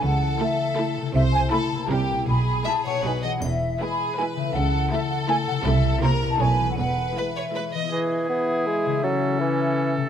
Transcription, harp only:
X:1
M:3/4
L:1/8
Q:1/4=161
K:E
V:1 name="Harp"
[C,A,EA]6 | [=C,A,EA]4 [C,_B,E=G]2 | [B,,B,EG]4 [B,,B,DF]2 | [E,B,EG]6 |
[C,A,EA]6 | [=C,A,EA]2 [C,=CE_B]2 [=B,,^CDA]2 | [E,B,EG]6 | [E,B,EG]6 |
[C,A,EA]6 |]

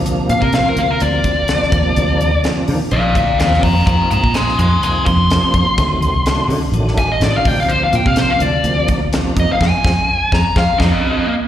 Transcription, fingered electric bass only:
X:1
M:4/4
L:1/16
Q:"Swing 16ths" 1/4=126
K:Fdor
V:1 name="Fingered electric bass" clef=bass
D,,2 B,, C,2 z D,,2 D,,2 D,,3 z E,, z | D,,2 E,, D,,3 E, z B,,,2 D,,2 E,,2 F,,2 | F,, z A,, B,,2 z F,,2 C,,2 F,,3 z F,, z | D,, z D,, C,,3 D, z =A,,,4 A,,, z D,,2- |
D,,2 B,, C,2 z D,,2 D,,2 D,,3 z F,, z | F,, z F,, z3 F,, z F,, z F,, z4 z |]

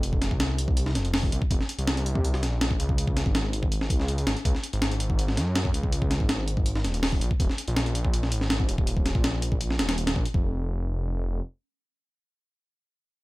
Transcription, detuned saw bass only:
X:1
M:4/4
L:1/16
Q:1/4=163
K:Ebdor
V:1 name="Detuned saw bass" clef=bass
F,,,3 C,,6- C,, F,,, F,,,3 C,, z | F,,, z2 C,,6- C,, B,,,4 D,,2- | D,,3 A,,,6- A,,, D,, D,,3 A,,, z | D,, z2 A,,,6- A,,, G,,4 D,,2- |
D,,3 A,,,6- A,,, E,,, E,,,3 B,,, z | E,,, z2 B,,,6- B,,, A,,,4 E,,,2- | E,,,3 B,,,6- B,,, E,,, E,,,3 B,,, z | F,,,12 z4 |
z16 |]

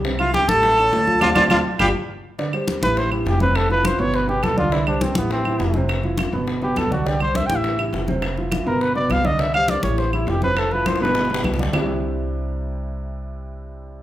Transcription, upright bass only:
X:1
M:4/4
L:1/8
Q:1/4=205
K:C
V:1 name="Upright bass" clef=bass
C,,3 A,,,3 D,,2 | D,, D,, D,, z G,,, z3 | z3 A,,,3 F,,,2- | F,,,3 G,,,3 C,,2- |
C,,3 A,,,3 F,,,2- | F,,,3 G,,,3 C,,2- | C,,3 A,,,3 F,,,2- | F,,,3 G,,,3 C,,2- |
C,,3 A,,,3 F,,,2- | F,,,3 G,,,3 C,,2 | C,,8- | C,,8 |]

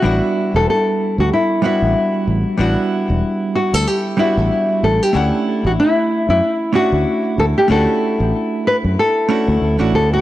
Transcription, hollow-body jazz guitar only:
X:1
M:4/4
L:1/16
Q:"Swing 16ths" 1/4=94
K:D
V:1 name="Hollow-body jazz guitar"
[G,B,DEF]8- [G,B,DEF]2 [G,B,DEF]6 | [G,B,DEF]8- [G,B,DEF]2 [G,B,DEF]6 | [A,CDEf]8- [A,CDEf]2 [A,CDEF]6 | [A,CDEF]8- [A,CDEF]2 [A,CDEF]3 [A,CDEF]3 |]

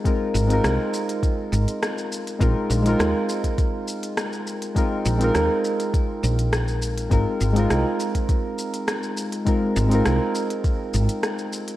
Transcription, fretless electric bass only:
X:1
M:4/4
L:1/8
Q:1/4=102
K:Ab
V:1 name="Fretless electric bass" clef=bass
z A,,, C,, z2 A,,, z2 | B,,, B,,, E,, z4 z | z B,,, E,, z2 B,,,3 | A,,, A,,, C,, z4 z |
z A,,, C,, z2 A,,, z2 |]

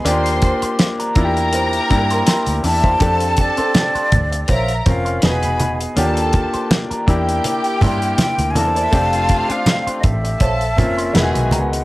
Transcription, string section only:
X:1
M:4/4
L:1/16
Q:"Swing 16ths" 1/4=81
K:F
V:1 name="String section"
[cc']4 z2 [Bb]6- [Bb]3/2 z/2 [Dd]/2 [Ee]/2 [Ff]/2 [Gg]/2 | [Aa]6 z2 [Bb]2 z2 [=B=b]2 z2 | [Aa]4 z2 [Gg]6- [Gg]3/2 z/2 [B,B]/2 [Cc]/2 [Dd]/2 [Ee]/2 | [Ff]6 z2 [Aa]2 z2 [^G^g]2 z2 |]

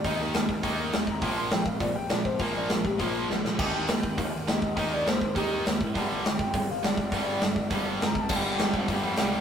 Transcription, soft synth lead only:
X:1
M:4/4
L:1/8
Q:1/4=204
K:Gm
V:1 name="Soft synth lead"
e B2 z4 b | g c' g f d g d c | B d B G F4 | z g3 f2 e2- |
e d c2 G2 z2 | z2 g3 f d d- | d4- d z b a | g g2 f g2 g2 |]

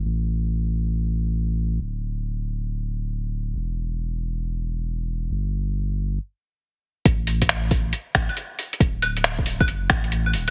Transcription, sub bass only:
X:1
M:4/4
L:1/8
Q:"Swing 16ths" 1/4=137
K:Dmix
V:1 name="Sub bass" clef=bass
A,,,8 | D,,,8 | E,,,8 | G,,,4 z4 |
A,,,4 z A,,, z2 | D,,,4 F,,, A,,,2 D,,, |]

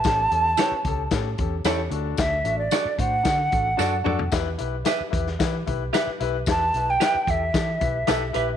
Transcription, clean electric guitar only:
X:1
M:4/4
L:1/16
Q:1/4=112
K:Em
V:1 name="Clean electric guitar"
z4 [EG^c] z6 z [EGc] z3 | z4 [FAd] z6 z [FAd] z [FAd]2 | z4 [GBe] z6 z [GBe] z3 | z4 [GBe] z6 z [GBe] z [GBe]2 |]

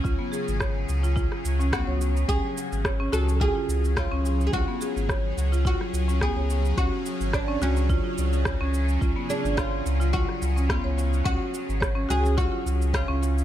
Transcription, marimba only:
X:1
M:4/4
L:1/16
Q:"Swing 16ths" 1/4=107
K:C#
V:1 name="Marimba"
E =B, G z c3 E E z2 C B, c3 | C z3 c C F C E E z2 c C z2 | E =B, G z c3 E E z2 C B, c3 | C z3 c C F C E E z2 c C z2 |
E =B, G z c3 E E z2 C B, c3 | C z3 c C F C E E z2 c C z2 |]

